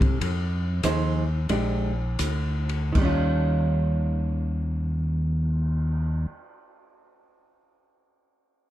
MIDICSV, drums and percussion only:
0, 0, Header, 1, 3, 480
1, 0, Start_track
1, 0, Tempo, 620476
1, 161, Time_signature, 4, 2, 24, 8
1, 645, Tempo, 681044
1, 1605, Tempo, 755668
1, 2085, Tempo, 786370
1, 5594, End_track
2, 0, Start_track
2, 0, Title_t, "Cymbal swell"
2, 2402, Note_on_c, 9, 59, 42
2, 3907, Note_off_c, 9, 59, 0
2, 5594, End_track
3, 0, Start_track
3, 0, Title_t, "Drums"
3, 8, Note_on_c, 9, 36, 60
3, 12, Note_on_c, 9, 51, 43
3, 85, Note_off_c, 9, 36, 0
3, 90, Note_off_c, 9, 51, 0
3, 163, Note_on_c, 9, 36, 19
3, 165, Note_on_c, 9, 51, 61
3, 240, Note_off_c, 9, 36, 0
3, 242, Note_off_c, 9, 51, 0
3, 645, Note_on_c, 9, 44, 52
3, 645, Note_on_c, 9, 51, 65
3, 647, Note_on_c, 9, 36, 25
3, 715, Note_off_c, 9, 44, 0
3, 715, Note_off_c, 9, 51, 0
3, 718, Note_off_c, 9, 36, 0
3, 1109, Note_on_c, 9, 51, 57
3, 1111, Note_on_c, 9, 36, 26
3, 1180, Note_off_c, 9, 51, 0
3, 1182, Note_off_c, 9, 36, 0
3, 1600, Note_on_c, 9, 44, 64
3, 1600, Note_on_c, 9, 51, 69
3, 1605, Note_on_c, 9, 36, 24
3, 1664, Note_off_c, 9, 44, 0
3, 1664, Note_off_c, 9, 51, 0
3, 1669, Note_off_c, 9, 36, 0
3, 1921, Note_on_c, 9, 51, 44
3, 1984, Note_off_c, 9, 51, 0
3, 2084, Note_on_c, 9, 49, 58
3, 2085, Note_on_c, 9, 36, 57
3, 2145, Note_off_c, 9, 49, 0
3, 2146, Note_off_c, 9, 36, 0
3, 5594, End_track
0, 0, End_of_file